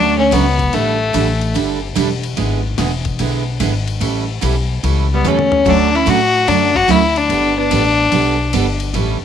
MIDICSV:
0, 0, Header, 1, 7, 480
1, 0, Start_track
1, 0, Key_signature, 2, "major"
1, 0, Tempo, 410678
1, 853, Time_signature, 4, 2, 24, 8
1, 10810, End_track
2, 0, Start_track
2, 0, Title_t, "Fiddle"
2, 0, Program_c, 0, 110
2, 0, Note_on_c, 0, 62, 102
2, 201, Note_off_c, 0, 62, 0
2, 213, Note_on_c, 0, 61, 91
2, 383, Note_on_c, 0, 59, 88
2, 401, Note_off_c, 0, 61, 0
2, 866, Note_on_c, 0, 57, 85
2, 883, Note_off_c, 0, 59, 0
2, 1820, Note_off_c, 0, 57, 0
2, 6011, Note_on_c, 0, 59, 79
2, 6166, Note_on_c, 0, 61, 89
2, 6183, Note_off_c, 0, 59, 0
2, 6655, Note_on_c, 0, 62, 100
2, 6672, Note_off_c, 0, 61, 0
2, 6960, Note_on_c, 0, 64, 92
2, 6977, Note_off_c, 0, 62, 0
2, 7123, Note_on_c, 0, 66, 106
2, 7141, Note_off_c, 0, 64, 0
2, 7577, Note_on_c, 0, 62, 100
2, 7595, Note_off_c, 0, 66, 0
2, 7901, Note_on_c, 0, 66, 102
2, 7919, Note_off_c, 0, 62, 0
2, 8071, Note_on_c, 0, 64, 94
2, 8089, Note_off_c, 0, 66, 0
2, 8389, Note_on_c, 0, 62, 88
2, 8407, Note_off_c, 0, 64, 0
2, 8854, Note_off_c, 0, 62, 0
2, 8861, Note_on_c, 0, 62, 96
2, 10248, Note_off_c, 0, 62, 0
2, 10810, End_track
3, 0, Start_track
3, 0, Title_t, "Steel-string acoustic guitar"
3, 0, Program_c, 1, 25
3, 0, Note_on_c, 1, 50, 55
3, 0, Note_on_c, 1, 54, 60
3, 0, Note_on_c, 1, 57, 59
3, 0, Note_on_c, 1, 61, 61
3, 0, Note_on_c, 1, 66, 61
3, 149, Note_off_c, 1, 50, 0
3, 152, Note_off_c, 1, 54, 0
3, 154, Note_off_c, 1, 57, 0
3, 155, Note_off_c, 1, 61, 0
3, 156, Note_off_c, 1, 66, 0
3, 365, Note_on_c, 1, 54, 76
3, 366, Note_on_c, 1, 50, 73
3, 373, Note_on_c, 1, 57, 81
3, 376, Note_on_c, 1, 61, 81
3, 377, Note_on_c, 1, 66, 89
3, 507, Note_off_c, 1, 54, 0
3, 508, Note_off_c, 1, 50, 0
3, 512, Note_off_c, 1, 57, 0
3, 513, Note_off_c, 1, 61, 0
3, 514, Note_off_c, 1, 66, 0
3, 856, Note_on_c, 1, 50, 55
3, 858, Note_on_c, 1, 62, 57
3, 861, Note_on_c, 1, 55, 62
3, 865, Note_on_c, 1, 64, 60
3, 867, Note_on_c, 1, 69, 64
3, 1117, Note_off_c, 1, 50, 0
3, 1118, Note_off_c, 1, 62, 0
3, 1119, Note_off_c, 1, 55, 0
3, 1121, Note_off_c, 1, 64, 0
3, 1122, Note_off_c, 1, 69, 0
3, 1323, Note_on_c, 1, 50, 78
3, 1330, Note_on_c, 1, 62, 76
3, 1330, Note_on_c, 1, 64, 77
3, 1331, Note_on_c, 1, 55, 78
3, 1337, Note_on_c, 1, 69, 89
3, 1467, Note_off_c, 1, 50, 0
3, 1470, Note_off_c, 1, 62, 0
3, 1470, Note_off_c, 1, 64, 0
3, 1471, Note_off_c, 1, 55, 0
3, 1474, Note_off_c, 1, 69, 0
3, 1802, Note_on_c, 1, 50, 60
3, 1809, Note_on_c, 1, 55, 59
3, 1810, Note_on_c, 1, 62, 67
3, 1811, Note_on_c, 1, 64, 60
3, 1813, Note_on_c, 1, 69, 71
3, 2070, Note_off_c, 1, 50, 0
3, 2074, Note_off_c, 1, 55, 0
3, 2074, Note_off_c, 1, 62, 0
3, 2075, Note_off_c, 1, 64, 0
3, 2075, Note_off_c, 1, 69, 0
3, 2283, Note_on_c, 1, 50, 78
3, 2285, Note_on_c, 1, 55, 78
3, 2287, Note_on_c, 1, 64, 81
3, 2291, Note_on_c, 1, 62, 80
3, 2292, Note_on_c, 1, 69, 78
3, 2427, Note_off_c, 1, 50, 0
3, 2428, Note_off_c, 1, 55, 0
3, 2429, Note_off_c, 1, 64, 0
3, 2431, Note_off_c, 1, 62, 0
3, 2432, Note_off_c, 1, 69, 0
3, 2764, Note_on_c, 1, 50, 56
3, 2768, Note_on_c, 1, 59, 57
3, 2769, Note_on_c, 1, 56, 57
3, 2772, Note_on_c, 1, 64, 60
3, 2774, Note_on_c, 1, 68, 68
3, 3031, Note_off_c, 1, 50, 0
3, 3033, Note_off_c, 1, 59, 0
3, 3034, Note_off_c, 1, 56, 0
3, 3035, Note_off_c, 1, 64, 0
3, 3036, Note_off_c, 1, 68, 0
3, 3253, Note_on_c, 1, 50, 72
3, 3258, Note_on_c, 1, 56, 77
3, 3260, Note_on_c, 1, 59, 75
3, 3260, Note_on_c, 1, 68, 73
3, 3262, Note_on_c, 1, 64, 77
3, 3392, Note_off_c, 1, 50, 0
3, 3395, Note_off_c, 1, 56, 0
3, 3395, Note_off_c, 1, 59, 0
3, 3395, Note_off_c, 1, 68, 0
3, 3397, Note_off_c, 1, 64, 0
3, 3732, Note_on_c, 1, 50, 60
3, 3739, Note_on_c, 1, 56, 62
3, 3744, Note_on_c, 1, 59, 65
3, 3745, Note_on_c, 1, 68, 63
3, 3746, Note_on_c, 1, 64, 66
3, 3995, Note_off_c, 1, 50, 0
3, 3998, Note_off_c, 1, 56, 0
3, 4001, Note_off_c, 1, 59, 0
3, 4001, Note_off_c, 1, 68, 0
3, 4002, Note_off_c, 1, 64, 0
3, 4208, Note_on_c, 1, 50, 81
3, 4208, Note_on_c, 1, 56, 80
3, 4214, Note_on_c, 1, 59, 77
3, 4214, Note_on_c, 1, 64, 79
3, 4220, Note_on_c, 1, 68, 77
3, 4350, Note_off_c, 1, 50, 0
3, 4350, Note_off_c, 1, 56, 0
3, 4353, Note_off_c, 1, 59, 0
3, 4353, Note_off_c, 1, 64, 0
3, 4356, Note_off_c, 1, 68, 0
3, 4679, Note_on_c, 1, 52, 55
3, 4683, Note_on_c, 1, 55, 63
3, 4683, Note_on_c, 1, 61, 58
3, 4687, Note_on_c, 1, 64, 62
3, 4689, Note_on_c, 1, 69, 60
3, 4949, Note_off_c, 1, 52, 0
3, 4951, Note_off_c, 1, 55, 0
3, 4951, Note_off_c, 1, 61, 0
3, 4953, Note_off_c, 1, 64, 0
3, 4954, Note_off_c, 1, 69, 0
3, 5158, Note_on_c, 1, 52, 80
3, 5160, Note_on_c, 1, 55, 79
3, 5165, Note_on_c, 1, 61, 73
3, 5168, Note_on_c, 1, 64, 72
3, 5172, Note_on_c, 1, 69, 80
3, 5305, Note_off_c, 1, 52, 0
3, 5306, Note_off_c, 1, 55, 0
3, 5308, Note_off_c, 1, 61, 0
3, 5310, Note_off_c, 1, 64, 0
3, 5312, Note_off_c, 1, 69, 0
3, 5647, Note_on_c, 1, 52, 58
3, 5651, Note_on_c, 1, 55, 58
3, 5655, Note_on_c, 1, 61, 60
3, 5657, Note_on_c, 1, 69, 69
3, 5658, Note_on_c, 1, 64, 58
3, 5913, Note_off_c, 1, 52, 0
3, 5915, Note_off_c, 1, 55, 0
3, 5917, Note_off_c, 1, 61, 0
3, 5918, Note_off_c, 1, 64, 0
3, 5918, Note_off_c, 1, 69, 0
3, 6130, Note_on_c, 1, 55, 73
3, 6131, Note_on_c, 1, 52, 66
3, 6132, Note_on_c, 1, 61, 74
3, 6137, Note_on_c, 1, 64, 78
3, 6138, Note_on_c, 1, 69, 88
3, 6270, Note_off_c, 1, 55, 0
3, 6271, Note_off_c, 1, 52, 0
3, 6272, Note_off_c, 1, 61, 0
3, 6274, Note_off_c, 1, 64, 0
3, 6275, Note_off_c, 1, 69, 0
3, 6600, Note_on_c, 1, 50, 53
3, 6605, Note_on_c, 1, 54, 51
3, 6608, Note_on_c, 1, 57, 59
3, 6611, Note_on_c, 1, 66, 60
3, 6612, Note_on_c, 1, 61, 59
3, 6869, Note_off_c, 1, 50, 0
3, 6872, Note_off_c, 1, 54, 0
3, 6873, Note_off_c, 1, 57, 0
3, 6875, Note_off_c, 1, 61, 0
3, 6875, Note_off_c, 1, 66, 0
3, 7080, Note_on_c, 1, 50, 72
3, 7084, Note_on_c, 1, 54, 74
3, 7084, Note_on_c, 1, 57, 77
3, 7089, Note_on_c, 1, 66, 86
3, 7090, Note_on_c, 1, 61, 76
3, 7226, Note_off_c, 1, 50, 0
3, 7227, Note_off_c, 1, 54, 0
3, 7228, Note_off_c, 1, 57, 0
3, 7230, Note_off_c, 1, 61, 0
3, 7230, Note_off_c, 1, 66, 0
3, 7566, Note_on_c, 1, 50, 59
3, 7569, Note_on_c, 1, 54, 59
3, 7573, Note_on_c, 1, 57, 61
3, 7574, Note_on_c, 1, 61, 60
3, 7574, Note_on_c, 1, 66, 70
3, 7832, Note_off_c, 1, 50, 0
3, 7833, Note_off_c, 1, 54, 0
3, 7836, Note_off_c, 1, 57, 0
3, 7836, Note_off_c, 1, 61, 0
3, 7836, Note_off_c, 1, 66, 0
3, 8037, Note_on_c, 1, 50, 72
3, 8038, Note_on_c, 1, 54, 75
3, 8040, Note_on_c, 1, 57, 80
3, 8044, Note_on_c, 1, 61, 82
3, 8051, Note_on_c, 1, 66, 73
3, 8184, Note_off_c, 1, 50, 0
3, 8184, Note_off_c, 1, 54, 0
3, 8185, Note_off_c, 1, 57, 0
3, 8187, Note_off_c, 1, 61, 0
3, 8191, Note_off_c, 1, 66, 0
3, 8524, Note_on_c, 1, 55, 54
3, 8528, Note_on_c, 1, 59, 63
3, 8531, Note_on_c, 1, 62, 55
3, 8533, Note_on_c, 1, 69, 59
3, 8790, Note_off_c, 1, 55, 0
3, 8793, Note_off_c, 1, 59, 0
3, 8794, Note_off_c, 1, 62, 0
3, 8795, Note_off_c, 1, 69, 0
3, 9006, Note_on_c, 1, 55, 72
3, 9009, Note_on_c, 1, 59, 79
3, 9016, Note_on_c, 1, 62, 78
3, 9021, Note_on_c, 1, 69, 87
3, 9148, Note_off_c, 1, 55, 0
3, 9150, Note_off_c, 1, 59, 0
3, 9153, Note_off_c, 1, 62, 0
3, 9155, Note_off_c, 1, 69, 0
3, 9492, Note_on_c, 1, 55, 58
3, 9498, Note_on_c, 1, 62, 72
3, 9499, Note_on_c, 1, 59, 60
3, 9505, Note_on_c, 1, 69, 65
3, 9754, Note_off_c, 1, 55, 0
3, 9757, Note_off_c, 1, 62, 0
3, 9758, Note_off_c, 1, 59, 0
3, 9761, Note_off_c, 1, 69, 0
3, 9974, Note_on_c, 1, 55, 73
3, 9975, Note_on_c, 1, 59, 83
3, 9977, Note_on_c, 1, 62, 81
3, 9986, Note_on_c, 1, 69, 77
3, 10112, Note_off_c, 1, 55, 0
3, 10112, Note_off_c, 1, 59, 0
3, 10114, Note_off_c, 1, 62, 0
3, 10118, Note_off_c, 1, 69, 0
3, 10446, Note_on_c, 1, 52, 60
3, 10452, Note_on_c, 1, 61, 62
3, 10453, Note_on_c, 1, 55, 55
3, 10456, Note_on_c, 1, 64, 65
3, 10459, Note_on_c, 1, 69, 58
3, 10711, Note_off_c, 1, 52, 0
3, 10714, Note_off_c, 1, 55, 0
3, 10714, Note_off_c, 1, 61, 0
3, 10716, Note_off_c, 1, 64, 0
3, 10717, Note_off_c, 1, 69, 0
3, 10810, End_track
4, 0, Start_track
4, 0, Title_t, "Hollow-body jazz guitar"
4, 0, Program_c, 2, 26
4, 0, Note_on_c, 2, 57, 84
4, 201, Note_off_c, 2, 57, 0
4, 215, Note_on_c, 2, 57, 74
4, 379, Note_off_c, 2, 57, 0
4, 379, Note_on_c, 2, 54, 75
4, 866, Note_off_c, 2, 54, 0
4, 866, Note_on_c, 2, 52, 68
4, 1820, Note_off_c, 2, 52, 0
4, 6007, Note_on_c, 2, 55, 70
4, 6173, Note_off_c, 2, 55, 0
4, 6173, Note_on_c, 2, 57, 78
4, 6628, Note_off_c, 2, 57, 0
4, 6643, Note_on_c, 2, 57, 80
4, 6955, Note_off_c, 2, 57, 0
4, 6955, Note_on_c, 2, 61, 79
4, 7107, Note_off_c, 2, 61, 0
4, 7107, Note_on_c, 2, 62, 88
4, 7586, Note_off_c, 2, 62, 0
4, 7586, Note_on_c, 2, 57, 80
4, 7890, Note_off_c, 2, 57, 0
4, 7890, Note_on_c, 2, 62, 78
4, 8062, Note_off_c, 2, 62, 0
4, 8062, Note_on_c, 2, 61, 82
4, 8379, Note_off_c, 2, 61, 0
4, 8379, Note_on_c, 2, 59, 78
4, 8845, Note_off_c, 2, 59, 0
4, 8859, Note_on_c, 2, 59, 69
4, 10247, Note_off_c, 2, 59, 0
4, 10810, End_track
5, 0, Start_track
5, 0, Title_t, "Upright bass"
5, 0, Program_c, 3, 32
5, 0, Note_on_c, 3, 38, 86
5, 365, Note_off_c, 3, 38, 0
5, 381, Note_on_c, 3, 37, 88
5, 842, Note_off_c, 3, 37, 0
5, 856, Note_on_c, 3, 33, 81
5, 1320, Note_off_c, 3, 33, 0
5, 1334, Note_on_c, 3, 33, 95
5, 1799, Note_off_c, 3, 33, 0
5, 1821, Note_on_c, 3, 31, 89
5, 2283, Note_off_c, 3, 31, 0
5, 2299, Note_on_c, 3, 28, 88
5, 2762, Note_off_c, 3, 28, 0
5, 2782, Note_on_c, 3, 32, 87
5, 3244, Note_off_c, 3, 32, 0
5, 3254, Note_on_c, 3, 28, 92
5, 3719, Note_off_c, 3, 28, 0
5, 3736, Note_on_c, 3, 35, 90
5, 4200, Note_off_c, 3, 35, 0
5, 4208, Note_on_c, 3, 32, 86
5, 4677, Note_off_c, 3, 32, 0
5, 4689, Note_on_c, 3, 33, 82
5, 5157, Note_off_c, 3, 33, 0
5, 5175, Note_on_c, 3, 35, 93
5, 5640, Note_off_c, 3, 35, 0
5, 5652, Note_on_c, 3, 37, 85
5, 6118, Note_off_c, 3, 37, 0
5, 6129, Note_on_c, 3, 40, 83
5, 6597, Note_off_c, 3, 40, 0
5, 6615, Note_on_c, 3, 38, 84
5, 7080, Note_off_c, 3, 38, 0
5, 7098, Note_on_c, 3, 45, 95
5, 7562, Note_off_c, 3, 45, 0
5, 7572, Note_on_c, 3, 42, 90
5, 8038, Note_off_c, 3, 42, 0
5, 8048, Note_on_c, 3, 38, 87
5, 8516, Note_off_c, 3, 38, 0
5, 8525, Note_on_c, 3, 31, 84
5, 8994, Note_off_c, 3, 31, 0
5, 9013, Note_on_c, 3, 33, 94
5, 9478, Note_off_c, 3, 33, 0
5, 9492, Note_on_c, 3, 35, 94
5, 9958, Note_off_c, 3, 35, 0
5, 9978, Note_on_c, 3, 31, 89
5, 10437, Note_off_c, 3, 31, 0
5, 10444, Note_on_c, 3, 33, 88
5, 10742, Note_off_c, 3, 33, 0
5, 10810, End_track
6, 0, Start_track
6, 0, Title_t, "Muted upright bass strokes"
6, 10765, Note_on_c, 9, 29, 40
6, 10810, Note_off_c, 9, 29, 0
6, 10810, End_track
7, 0, Start_track
7, 0, Title_t, "Drums"
7, 376, Note_on_c, 9, 44, 59
7, 376, Note_on_c, 9, 51, 72
7, 492, Note_off_c, 9, 44, 0
7, 492, Note_off_c, 9, 51, 0
7, 690, Note_on_c, 9, 36, 52
7, 693, Note_on_c, 9, 51, 49
7, 807, Note_off_c, 9, 36, 0
7, 810, Note_off_c, 9, 51, 0
7, 853, Note_on_c, 9, 51, 60
7, 970, Note_off_c, 9, 51, 0
7, 1336, Note_on_c, 9, 44, 64
7, 1336, Note_on_c, 9, 51, 80
7, 1453, Note_off_c, 9, 44, 0
7, 1453, Note_off_c, 9, 51, 0
7, 1653, Note_on_c, 9, 51, 47
7, 1770, Note_off_c, 9, 51, 0
7, 1819, Note_on_c, 9, 51, 65
7, 1936, Note_off_c, 9, 51, 0
7, 2296, Note_on_c, 9, 44, 55
7, 2296, Note_on_c, 9, 51, 68
7, 2412, Note_off_c, 9, 44, 0
7, 2412, Note_off_c, 9, 51, 0
7, 2612, Note_on_c, 9, 51, 49
7, 2729, Note_off_c, 9, 51, 0
7, 2771, Note_on_c, 9, 51, 58
7, 2888, Note_off_c, 9, 51, 0
7, 3248, Note_on_c, 9, 38, 40
7, 3248, Note_on_c, 9, 44, 58
7, 3248, Note_on_c, 9, 51, 78
7, 3365, Note_off_c, 9, 38, 0
7, 3365, Note_off_c, 9, 44, 0
7, 3365, Note_off_c, 9, 51, 0
7, 3564, Note_on_c, 9, 51, 49
7, 3568, Note_on_c, 9, 36, 60
7, 3681, Note_off_c, 9, 51, 0
7, 3684, Note_off_c, 9, 36, 0
7, 3728, Note_on_c, 9, 51, 71
7, 3845, Note_off_c, 9, 51, 0
7, 4208, Note_on_c, 9, 44, 64
7, 4208, Note_on_c, 9, 51, 68
7, 4325, Note_off_c, 9, 44, 0
7, 4325, Note_off_c, 9, 51, 0
7, 4530, Note_on_c, 9, 51, 48
7, 4647, Note_off_c, 9, 51, 0
7, 4690, Note_on_c, 9, 51, 66
7, 4807, Note_off_c, 9, 51, 0
7, 5171, Note_on_c, 9, 44, 62
7, 5171, Note_on_c, 9, 51, 74
7, 5288, Note_off_c, 9, 44, 0
7, 5288, Note_off_c, 9, 51, 0
7, 5654, Note_on_c, 9, 51, 63
7, 5771, Note_off_c, 9, 51, 0
7, 6136, Note_on_c, 9, 44, 63
7, 6136, Note_on_c, 9, 48, 50
7, 6253, Note_off_c, 9, 44, 0
7, 6253, Note_off_c, 9, 48, 0
7, 6297, Note_on_c, 9, 48, 63
7, 6413, Note_off_c, 9, 48, 0
7, 6449, Note_on_c, 9, 43, 89
7, 6565, Note_off_c, 9, 43, 0
7, 6615, Note_on_c, 9, 36, 70
7, 6617, Note_on_c, 9, 49, 74
7, 6731, Note_off_c, 9, 36, 0
7, 6733, Note_off_c, 9, 49, 0
7, 7094, Note_on_c, 9, 44, 63
7, 7094, Note_on_c, 9, 51, 73
7, 7211, Note_off_c, 9, 44, 0
7, 7211, Note_off_c, 9, 51, 0
7, 7574, Note_on_c, 9, 51, 69
7, 7691, Note_off_c, 9, 51, 0
7, 7887, Note_on_c, 9, 36, 50
7, 8004, Note_off_c, 9, 36, 0
7, 8050, Note_on_c, 9, 44, 60
7, 8050, Note_on_c, 9, 51, 73
7, 8167, Note_off_c, 9, 44, 0
7, 8167, Note_off_c, 9, 51, 0
7, 8369, Note_on_c, 9, 51, 49
7, 8486, Note_off_c, 9, 51, 0
7, 8531, Note_on_c, 9, 51, 60
7, 8648, Note_off_c, 9, 51, 0
7, 9012, Note_on_c, 9, 44, 57
7, 9012, Note_on_c, 9, 51, 72
7, 9129, Note_off_c, 9, 44, 0
7, 9129, Note_off_c, 9, 51, 0
7, 9488, Note_on_c, 9, 51, 72
7, 9605, Note_off_c, 9, 51, 0
7, 9970, Note_on_c, 9, 44, 57
7, 9970, Note_on_c, 9, 51, 71
7, 10087, Note_off_c, 9, 44, 0
7, 10087, Note_off_c, 9, 51, 0
7, 10284, Note_on_c, 9, 51, 51
7, 10401, Note_off_c, 9, 51, 0
7, 10450, Note_on_c, 9, 51, 57
7, 10567, Note_off_c, 9, 51, 0
7, 10810, End_track
0, 0, End_of_file